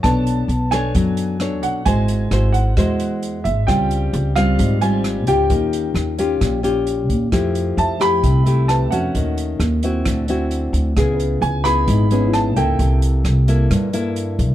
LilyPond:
<<
  \new Staff \with { instrumentName = "Grand piano" } { \time 4/4 \key cis \phrygian \tempo 4 = 132 a''4. gis''2 fis''8 | gis''4. fis''2 e''8 | g''4. eis''4 gis''4 g''8~ | g''2. r4 |
r4 a''8 b''4. a''8 fis''8~ | fis''8 r2. r8 | r4 gis''8 b''4. a''8 g''8~ | g''8 r2. r8 | }
  \new Staff \with { instrumentName = "Grand piano" } { \time 4/4 \key cis \phrygian r1 | r1 | r1 | r1 |
r4 e''4. r8 b'16 e''8.~ | e''8. r2. r16 | gis'16 b'4. r8. cis'16 e'4~ e'16~ | e'16 r2. r8. | }
  \new Staff \with { instrumentName = "Nylon-string guitar" } { \time 4/4 \key cis \phrygian << { <d' a' cis''>4 r8 <d' a' cis''>4. <d' a' cis''>4 | <e' fis' bis'>4 <e' fis' bis'>4 <e' fis' bis'>4. r8 | <g bis eis'>4. <g bis eis'>4 <g bis eis'>4 <cis' eis' g'>8~ | <cis' eis' g'>4. <cis' eis' g'>4 <cis' eis' g'>4. |
<a e' g'>4. <a e' g'>4 <a e' g'>4 <a cis' fis'>8~ | <a cis' fis'>4. <c' e' fis'>4 <c' e' fis'>4. | <b e' gis'>4. <b e' gis'>4 <b e' gis'>4 <bes e' a'>8~ | <bes e' a'>4. <bes e' a'>4 <bes e' a'>4. | } \\ { b2 fis2 | gis2 gis2 | cis2 gis,2 | dis2 ais,2 |
f2 c2 | dis2 d2 | cis2 gis,2 | c2 g,2 | } >> }
  \new Staff \with { instrumentName = "Upright bass" } { \clef bass \time 4/4 \key cis \phrygian b,,4 b,,4 fis,4. b,,8 | gis,,4 gis,,4 e,4. gis,,8 | cis,4 cis,4 gis,,4. cis,8 | dis,4 dis,4 ais,,4. dis,8 |
f,4 f,4 c,4. f,8 | dis,4 dis,4 d,4. d,8 | cis,4 cis,4 gis,,4. cis,8 | c,4 c,4 g,4. c,8 | }
  \new DrumStaff \with { instrumentName = "Drums" } \drummode { \time 4/4 <hh bd ss>8 hh8 hh8 <hh ss>8 <hh bd>8 hh8 <hh ss>8 hh8 | <hh bd>8 hh8 <hh ss>8 hh8 <hh bd ss>8 hh8 hh8 hh8 | <hh bd ss>8 hh8 hh8 <hh ss>8 <hh bd>8 hh8 <hh ss>8 hh8 | <hh bd>8 hh8 <hh ss>8 hh8 <hh bd ss>8 hh8 hh8 <hh bd>8 |
<hh bd ss>8 hh8 hh8 <hh ss>8 <hh bd>8 hh8 <hh ss>8 hh8 | <hh bd>8 hh8 <hh ss>8 hh8 <hh bd ss>8 hh8 hh8 hh8 | <hh bd ss>8 hh8 hh8 <hh ss>8 <hh bd>8 hh8 <hh ss>8 hh8 | <hh bd>8 hh8 <hh ss>8 hh8 <hh bd ss>8 hh8 hh8 <hh bd>8 | }
>>